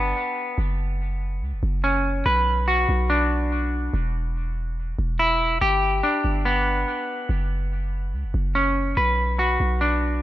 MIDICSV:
0, 0, Header, 1, 3, 480
1, 0, Start_track
1, 0, Key_signature, 2, "minor"
1, 0, Tempo, 419580
1, 662, Time_signature, 4, 2, 24, 8
1, 11693, End_track
2, 0, Start_track
2, 0, Title_t, "Clean electric guitar"
2, 0, Program_c, 0, 27
2, 0, Note_on_c, 0, 59, 86
2, 0, Note_on_c, 0, 62, 82
2, 0, Note_on_c, 0, 67, 100
2, 663, Note_off_c, 0, 59, 0
2, 663, Note_off_c, 0, 62, 0
2, 663, Note_off_c, 0, 67, 0
2, 2102, Note_on_c, 0, 61, 76
2, 2582, Note_off_c, 0, 61, 0
2, 2582, Note_on_c, 0, 71, 91
2, 3062, Note_on_c, 0, 66, 79
2, 3543, Note_on_c, 0, 62, 81
2, 4502, Note_off_c, 0, 71, 0
2, 4503, Note_off_c, 0, 62, 0
2, 4503, Note_off_c, 0, 66, 0
2, 5942, Note_on_c, 0, 64, 80
2, 6418, Note_off_c, 0, 64, 0
2, 6423, Note_on_c, 0, 67, 99
2, 6903, Note_on_c, 0, 62, 79
2, 7383, Note_on_c, 0, 59, 86
2, 8343, Note_off_c, 0, 59, 0
2, 8343, Note_off_c, 0, 62, 0
2, 8343, Note_off_c, 0, 67, 0
2, 9783, Note_on_c, 0, 61, 82
2, 10262, Note_on_c, 0, 71, 84
2, 10263, Note_off_c, 0, 61, 0
2, 10742, Note_on_c, 0, 66, 74
2, 11222, Note_on_c, 0, 62, 76
2, 11693, Note_off_c, 0, 62, 0
2, 11693, Note_off_c, 0, 66, 0
2, 11693, Note_off_c, 0, 71, 0
2, 11693, End_track
3, 0, Start_track
3, 0, Title_t, "808-style bass"
3, 0, Program_c, 1, 38
3, 0, Note_on_c, 1, 31, 104
3, 154, Note_off_c, 1, 31, 0
3, 662, Note_on_c, 1, 30, 108
3, 1622, Note_on_c, 1, 37, 100
3, 1639, Note_off_c, 1, 30, 0
3, 1750, Note_on_c, 1, 30, 96
3, 1767, Note_off_c, 1, 37, 0
3, 1857, Note_off_c, 1, 30, 0
3, 1863, Note_on_c, 1, 30, 104
3, 2554, Note_off_c, 1, 30, 0
3, 2583, Note_on_c, 1, 35, 115
3, 3274, Note_off_c, 1, 35, 0
3, 3303, Note_on_c, 1, 35, 102
3, 4457, Note_off_c, 1, 35, 0
3, 4502, Note_on_c, 1, 28, 116
3, 5657, Note_off_c, 1, 28, 0
3, 5704, Note_on_c, 1, 28, 106
3, 6394, Note_off_c, 1, 28, 0
3, 6423, Note_on_c, 1, 31, 114
3, 6884, Note_off_c, 1, 31, 0
3, 7143, Note_on_c, 1, 31, 101
3, 7834, Note_off_c, 1, 31, 0
3, 8343, Note_on_c, 1, 30, 109
3, 9303, Note_on_c, 1, 37, 101
3, 9320, Note_off_c, 1, 30, 0
3, 9430, Note_on_c, 1, 30, 96
3, 9448, Note_off_c, 1, 37, 0
3, 9537, Note_off_c, 1, 30, 0
3, 9543, Note_on_c, 1, 30, 107
3, 10234, Note_off_c, 1, 30, 0
3, 10263, Note_on_c, 1, 35, 110
3, 10954, Note_off_c, 1, 35, 0
3, 10983, Note_on_c, 1, 35, 98
3, 11693, Note_off_c, 1, 35, 0
3, 11693, End_track
0, 0, End_of_file